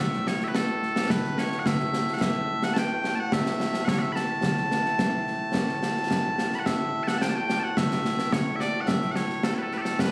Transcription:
0.00 10.12 A2 medium
0.00 10.12 A3 medium
0.00 0.27 E5 medium
0.13 snare soft
0.27 0.44 C#5 medium
0.27 snare medium
0.41 0.48 E5 medium
0.41 snare soft
0.48 0.56 B4 medium
0.55 1.11 A4 medium
0.55 snare loud
0.82 snare soft
0.96 snare medium
1.10 1.39 B4 loud
1.10 concert bass drum medium
1.10 snare loud
1.24 snare soft
1.38 1.59 C#5 medium
1.38 snare medium
1.52 snare soft
1.59 1.67 F#5 medium
1.66 2.14 E5 loud
1.66 concert bass drum medium
1.66 snare loud
1.80 snare soft
1.94 snare medium
2.08 snare soft
2.14 2.21 F#5 medium
2.21 2.64 E5 loud
2.21 concert bass drum medium
2.21 snare loud
2.63 2.74 F#5 loud
2.63 snare medium
2.74 2.78 A5 loud
2.74 snare loud
2.78 3.15 G5 loud
3.04 snare medium
3.15 3.20 A5 medium
3.20 3.33 F#5 medium
3.32 3.85 E5 loud
3.32 concert bass drum medium
3.32 snare loud
3.46 snare medium
3.60 snare medium
3.74 snare medium
3.85 3.99 C#5 loud
3.85 3.89 F#5 loud
3.85 concert bass drum medium
3.85 snare loud
3.99 4.12 E5 loud
3.99 4.02 F#5 loud
4.12 6.55 A5 loud
4.12 4.16 B5 loud
4.12 snare medium
4.43 concert bass drum medium
4.43 snare medium
4.57 snare soft
4.71 snare medium
4.85 snare soft
4.99 concert bass drum medium
4.99 snare loud
5.27 snare soft
5.54 concert bass drum medium
5.54 snare loud
5.69 snare soft
5.83 snare medium
5.96 snare soft
6.11 concert bass drum medium
6.11 snare loud
6.38 snare medium
6.52 6.59 B5 medium
6.52 snare soft
6.59 6.66 F#5 medium
6.66 7.03 E5 loud
6.66 concert bass drum medium
6.66 snare medium
7.03 7.08 A5 medium
7.08 7.18 F#5 medium
7.08 snare medium
7.18 7.29 G5 medium
7.18 7.22 A5 medium
7.18 snare loud
7.29 7.36 A5 medium
7.36 7.59 G5 medium
7.50 snare medium
7.59 7.64 A5 medium
7.64 7.77 F#5 medium
7.77 8.33 E5 medium
7.77 concert bass drum medium
7.77 snare medium
7.91 snare medium
8.05 snare medium
8.19 snare medium
8.32 8.56 C#5 medium
8.32 concert bass drum medium
8.32 snare loud
8.56 8.60 E5 medium
8.60 8.81 D5 medium
8.60 snare medium
8.81 8.88 F#5 medium
8.88 9.11 E5 loud
8.88 concert bass drum medium
8.88 snare medium
9.02 snare soft
9.11 9.16 F#5 medium
9.16 9.44 C#5 medium
9.16 snare medium
9.30 snare soft
9.43 9.54 A4 medium
9.43 snare loud
9.54 9.63 B4 medium
9.54 9.58 C#5 medium
9.63 9.74 A4 medium
9.71 9.78 B4 medium
9.71 snare soft
9.78 9.81 G4 medium
9.78 10.01 A4 medium
9.85 snare medium
9.99 10.12 B4 medium
9.99 concert bass drum medium
9.99 snare loud

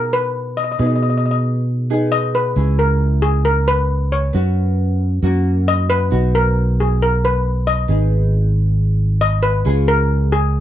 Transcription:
0.00 0.75 B2 medium
0.00 0.75 B3 soft
0.00 0.75 D#4 soft
0.00 0.75 F#4 medium
0.00 0.13 A#4 medium
0.13 0.59 B4 medium
0.57 0.63 D#5 medium
0.64 0.70 D#5 soft
0.72 0.78 D#5 soft
0.78 2.53 B2 medium
0.78 1.88 B3 soft
0.78 1.88 D#4 soft
0.78 1.88 G#4 medium
0.78 0.85 D#5 soft
0.86 0.94 D#5 soft
0.96 1.01 D#5 soft
1.03 1.09 D#5 soft
1.10 1.16 D#5 soft
1.18 1.25 D#5 soft
1.26 1.30 D#5 soft
1.31 1.39 D#5 medium
1.90 2.55 B3 soft
1.90 2.56 D#4 soft
1.90 2.56 G#4 medium
2.12 2.35 D#5 medium
2.35 2.80 B4 medium
2.56 4.30 C#2 medium
2.56 4.30 C#4 soft
2.56 4.30 E4 soft
2.56 4.31 G#4 medium
2.79 3.25 A#4 medium
3.22 3.32 G#4 medium
3.45 3.68 A#4 medium
3.68 4.09 B4 medium
4.12 4.97 C#5 medium
4.33 5.21 F#2 medium
4.33 5.20 B3 medium
4.33 5.21 C#4 soft
4.33 5.21 F#4 medium
5.22 6.10 F#2 medium
5.22 6.09 A#3 medium
5.22 6.10 C#4 medium
5.22 6.10 F#4 medium
5.68 5.88 D#5 medium
5.90 6.35 B4 medium
6.10 7.85 B1 medium
6.10 7.85 B3 medium
6.10 7.85 D#4 soft
6.10 7.85 F#4 medium
6.35 6.75 A#4 medium
6.80 6.90 G#4 medium
7.02 7.22 A#4 medium
7.25 7.65 B4 medium
7.67 8.51 D#5 medium
7.88 9.62 G#1 medium
7.88 9.62 B3 medium
7.88 9.62 D#4 medium
7.88 9.63 G#4 medium
9.21 9.44 D#5 medium
9.43 9.89 B4 medium
9.65 10.60 C#2 medium
9.65 10.60 C#4 medium
9.65 10.60 F4 soft
9.65 10.60 G#4 medium
9.88 10.34 A#4 medium
10.32 10.60 G#4 medium

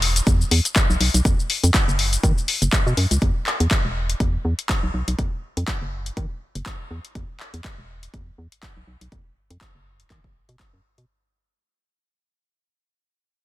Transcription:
0.00 0.21 E1 medium
0.00 open hi-hat loud
0.16 closed hi-hat medium
0.16 shaker medium
0.27 0.44 E2 loud
0.27 kick loud
0.27 closed hi-hat soft
0.27 shaker medium
0.41 shaker soft
0.51 0.60 E2 loud
0.51 open hi-hat loud
0.65 closed hi-hat medium
0.65 shaker medium
0.76 kick loud
0.76 clap loud
0.76 closed hi-hat soft
0.76 shaker medium
0.90 0.97 B1 medium
0.90 shaker soft
1.01 1.10 B1 medium
1.01 open hi-hat medium
1.14 1.21 B1 medium
1.14 closed hi-hat medium
1.14 shaker medium
1.25 1.34 F2 medium
1.25 kick loud
1.25 closed hi-hat soft
1.25 shaker medium
1.40 shaker soft
1.50 open hi-hat loud
1.64 1.71 F2 loud
1.64 closed hi-hat medium
1.64 shaker medium
1.74 kick loud
1.74 clap loud
1.74 closed hi-hat soft
1.74 shaker medium
1.88 2.18 F#1 medium
1.88 shaker soft
1.99 open hi-hat medium
2.13 closed hi-hat medium
2.13 shaker medium
2.23 2.33 D#3 medium
2.23 kick loud
2.23 closed hi-hat soft
2.23 shaker medium
2.38 shaker soft
2.48 open hi-hat loud
2.62 2.69 F#1 medium
2.62 closed hi-hat medium
2.62 shaker medium
2.73 kick loud
2.73 clap loud
2.73 closed hi-hat soft
2.73 shaker soft
2.86 2.94 B2 loud
2.86 shaker soft
2.97 3.06 F#2 medium
2.97 open hi-hat medium
3.11 3.18 C#2 medium
3.11 closed hi-hat medium
3.11 shaker medium
3.22 3.31 E2 loud
3.22 kick loud
3.22 closed hi-hat soft
3.46 clap medium
3.60 3.67 E2 loud
3.60 closed hi-hat medium
3.71 kick loud
3.71 clap loud
3.71 closed hi-hat soft
3.85 4.14 E1 medium
4.10 closed hi-hat medium
4.20 4.37 E2 loud
4.20 kick loud
4.20 closed hi-hat soft
4.45 4.54 E2 loud
4.59 closed hi-hat medium
4.69 kick loud
4.69 clap loud
4.69 closed hi-hat soft
4.83 4.90 B1 medium
4.94 5.03 B1 medium
5.08 5.15 B1 medium
5.08 closed hi-hat medium
5.19 5.28 F2 medium
5.19 kick loud
5.19 closed hi-hat soft
5.57 5.64 F2 loud
5.57 closed hi-hat medium
5.68 kick loud
5.68 clap loud
5.68 closed hi-hat soft
5.82 6.11 F#1 medium
6.06 closed hi-hat medium
6.17 6.26 D#3 medium
6.17 kick loud
6.17 closed hi-hat soft
6.55 6.62 F#1 medium
6.55 closed hi-hat medium
6.66 kick loud
6.66 clap loud
6.66 closed hi-hat soft
6.91 7.00 E2 loud
7.05 closed hi-hat medium
7.15 7.24 E2 medium
7.15 kick loud
7.15 closed hi-hat soft
7.40 clap medium
7.54 7.61 E2 medium
7.54 closed hi-hat medium
7.64 kick loud
7.64 clap loud
7.64 closed hi-hat soft
7.78 8.08 E1 medium
8.03 closed hi-hat medium
8.14 8.31 E2 loud
8.14 kick loud
8.14 closed hi-hat medium
8.38 8.47 E2 loud
8.52 closed hi-hat medium
8.63 kick loud
8.63 clap loud
8.63 closed hi-hat soft
8.77 8.84 B1 medium
8.87 8.97 B1 medium
9.01 9.08 B1 medium
9.01 closed hi-hat medium
9.12 9.21 F2 medium
9.12 kick loud
9.12 closed hi-hat soft
9.50 9.57 F2 loud
9.50 closed hi-hat medium
9.61 kick loud
9.61 clap loud
9.61 closed hi-hat soft
9.75 10.04 F#1 medium
10.00 closed hi-hat medium
10.10 10.19 D#3 medium
10.10 kick loud
10.10 clap medium
10.10 closed hi-hat soft
10.24 kick medium
10.49 10.56 B2 medium
10.49 closed hi-hat medium
10.60 kick loud
10.60 clap loud
10.60 closed hi-hat soft
10.73 10.80 F#2 medium
10.98 11.05 B2 medium
10.98 closed hi-hat medium

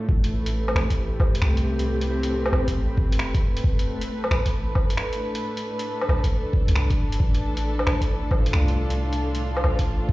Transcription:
0.00 7.19 A2 medium
0.00 7.19 A3 medium
0.08 0.74 A1 loud
0.08 kick loud
0.24 closed hi-hat soft
0.31 8.46 B4 medium
0.46 closed hi-hat medium
0.51 3.83 G4 medium
0.61 4.84 C4 medium
0.68 low woodblock medium
0.75 1.19 A1 loud
0.75 finger snap loud
0.75 low woodblock medium
0.90 kick medium
0.90 closed hi-hat medium
1.19 1.41 A1 medium
1.19 kick loud
1.19 low woodblock medium
1.35 closed hi-hat medium
1.41 2.52 C2 medium
1.41 finger snap loud
1.57 closed hi-hat soft
1.79 closed hi-hat medium
2.01 closed hi-hat soft
2.23 closed hi-hat medium
2.46 low woodblock medium
2.52 3.20 A1 medium
2.52 low woodblock medium
2.68 kick medium
2.68 closed hi-hat medium
2.97 kick loud
3.12 closed hi-hat medium
3.19 4.07 E1 loud
3.19 finger snap loud
3.34 kick loud
3.34 closed hi-hat soft
3.57 closed hi-hat medium
3.64 10.13 A4 medium
3.64 kick loud
3.79 closed hi-hat soft
4.01 closed hi-hat medium
4.24 low woodblock medium
4.31 4.74 A1 medium
4.31 finger snap loud
4.31 low woodblock medium
4.46 kick medium
4.46 closed hi-hat medium
4.70 10.13 D4 medium
4.75 kick loud
4.75 low woodblock soft
4.90 closed hi-hat medium
4.97 finger snap loud
5.13 closed hi-hat soft
5.35 closed hi-hat medium
5.57 closed hi-hat soft
5.79 closed hi-hat medium
6.01 low woodblock medium
6.09 6.30 A1 loud
6.09 low woodblock medium
6.24 kick medium
6.24 closed hi-hat medium
6.53 kick loud
6.68 6.99 C2 loud
6.68 closed hi-hat medium
6.76 finger snap loud
6.90 kick loud
6.90 closed hi-hat soft
6.98 7.19 G1 medium
7.12 closed hi-hat medium
7.20 7.86 A1 loud
7.20 10.13 A2 loud
7.20 kick loud
7.35 closed hi-hat soft
7.44 10.13 A3 medium
7.57 closed hi-hat medium
7.79 low woodblock medium
7.86 8.30 A1 loud
7.86 finger snap loud
7.86 low woodblock medium
8.01 kick medium
8.01 closed hi-hat medium
8.31 8.52 A1 medium
8.31 kick loud
8.31 low woodblock medium
8.42 10.13 F4 medium
8.42 closed hi-hat soft
8.53 9.63 C2 loud
8.53 finger snap loud
8.68 closed hi-hat soft
8.90 closed hi-hat medium
9.13 closed hi-hat soft
9.35 closed hi-hat medium
9.57 low woodblock medium
9.64 10.13 A1 loud
9.64 low woodblock medium
9.79 kick medium
9.79 closed hi-hat medium
10.09 kick loud

